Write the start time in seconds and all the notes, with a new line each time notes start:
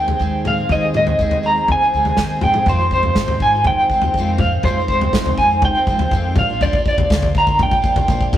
Already playing: D#2 D#3 C4 D#4 G#4 G5
0.08 G#3 C4 G#4, floor tom
0.19 D#2 D#3 G#3 C4 G#4, kick
0.45 D#3 G#3 C4 G#4 F5, floor tom, mid tom
0.58 G#3 C4 G#4
0.69 D#2 D#3 G#3 C4 D#4 G#4 D#5, kick, floor tom
0.83 G#3 C4 G#4
0.94 D#3 G#3 C4 G#4 D#5, mid tom
1.07 floor tom
1.19 D#2 D#3 G#3 C4 G#4, kick
1.31 floor tom
1.43 D#3 G#3 C4 D#4 G#4 A#5
1.56 G#3 C4 G#4
1.68 D#2 C4 G#5, kick, floor tom
1.81 G#3 C4 G#4
1.94 D2 D#3 G#3 C4 D#4 G#4
2.05 C4 G#4, floor tom
2.09 G#3
2.17 D#2 D#3 G#3 C4 G#4, kick, snare
2.41 F2 D#3 G#3 G#4 G5, floor tom, mid tom
2.46 C4 G#4
2.54 G#3 C4 G#4, mid tom
2.66 F2 C3 D#3 G#3 C4 F4 C5, kick, floor tom
2.79 D#3 G#3 C4 F4
2.91 D#3 G#3 C4 C5, kick
2.96 F4
3.03 floor tom
3.15 F2 C3 D#3 G#3 C4, kick, snare
3.20 F4
3.28 floor tom
3.40 D#3 G#5, kick
3.44 G#3 C4 F4
3.55 D#3 G#3 C4 F4
3.64 F2 G5, kick, floor tom
3.79 D#3 G#3 C4 F4
3.90 D#3 G#3, kick
3.94 C4 F4
4.02 G#3 C4 F4, floor tom
4.06 D#3
4.14 F2 C3, kick
4.18 D#3 G#3 C4 F4
4.38 D#3 G#3 F5, kick, floor tom, mid tom
4.43 C4 F4
4.63 F2 C3 D#3 G#3 C5, kick, floor tom
4.67 C4 F4
4.79 D#3 G#3 C4 F4
4.88 D#3 G#3 C5, kick
4.93 C4 F4
5.01 floor tom
5.13 F2 C3 D#3 G#3 C4 F4, kick, snare
5.26 floor tom
5.38 D#3 G#3 C4 G#5, kick
5.42 F4
5.51 D#3 G#3 C4 F4
5.62 F2 G5, kick, floor tom
5.75 D#3 G#3 C4 F4
5.87 D#3 F3 G#3 C4 F4, kick
5.99 G#3 C4 F4, floor tom
6.03 D#3
6.11 F2 C3 D#3 G#3 C4 F4, kick
6.36 A#1 F3 A#3 D4 F5, kick, floor tom, mid tom
6.40 F4
6.50 A#3 D4 F4
6.61 A#2 F3 A#3 D4 F4 D5, kick, floor tom
6.73 F4, kick
6.78 A#3 D4
6.86 F3 A#3 D5, kick
6.90 D4 F4
6.98 kick, floor tom
7.10 D2 A#2 F3 A#3 D4 F4, kick, snare
7.22 kick, floor tom
7.35 F3 A#3 D4 F4 A#5, kick
7.47 A#3 D4 F4, kick
7.59 A#1 G5, kick, floor tom
7.71 A#3 D4 F4, kick
7.82 F3 A#3 D4 F4, kick
7.96 A#3 D4 F4, kick, floor tom
8.08 A#1 A#2 F3 A#3 D4 F4, kick
8.21 kick
8.33 kick, floor tom, mid tom